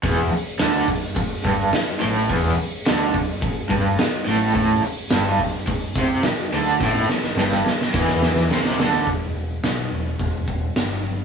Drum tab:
HH |o-o-o-o-o-o-o-o-|o-o-o-o-o-o-o-o-|o-o-o-o-o-o-o-o-|----------------|
SD |----o-------o---|----o-------o---|----o-------o---|oooooooooooooooo|
BD |o-----o-o-o-----|o-----o-o-o-----|o-----o-o-o-----|o-------o-------|

HH |o---o---o---o---|
SD |----o-------o---|
BD |o-------o-o-----|